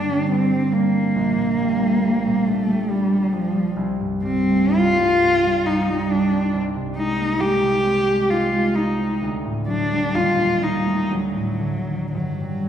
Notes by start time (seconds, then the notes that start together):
Already playing: G2 D3 A#3 D4
0.10 G3
0.31 C4 D4
0.52 G3
0.73 A#3 D4
0.95 A#3
1.16 A#1
1.38 A#2
1.60 G3
1.82 A3
2.05 G3
2.26 A#2
2.47 A3 D4
2.70 G3
2.90 G3 D4
3.12 G3
3.33 F3 D4
3.55 G3
3.76 C2
4.00 G2
4.24 G3 C4
4.51 A3
4.75 G3 F4
5.00 G2
5.24 C4
5.46 G3
5.66 D#4
5.89 G3
6.11 D4 D#4
6.32 C4
6.54 C2
6.76 C3
6.97 G#3 D#4
7.20 A#3
7.40 G#3 G4
7.63 C3
7.84 C4
8.08 G#3
8.30 D#4 F4
8.53 G#3
8.75 D#4
8.99 C4
9.21 D2
9.45 A2
9.68 F#3 D4
9.92 G3
10.14 D#2 F4
10.36 A#2
10.61 G3 D#4
10.86 A3
11.10 D2 F#3
11.35 A2
11.60 D3
11.87 D#3
12.14 G2 F#3
12.41 G3